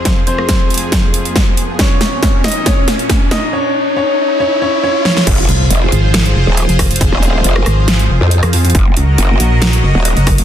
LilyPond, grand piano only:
\new Staff \with { instrumentName = "Grand piano" } { \time 4/4 \key f \phrygian \tempo 4 = 138 <c' c''>8 <c' c''>2.~ <c' c''>8 | <des' des''>4. <ees' ees''>8 <des' des''>4. <ees' ees''>8 | <des' des''>4 <des' des''>4 <des' des''>8 <des' des''>8 <des' des''>8 <des' des''>8 | r1 |
r1 | r1 | }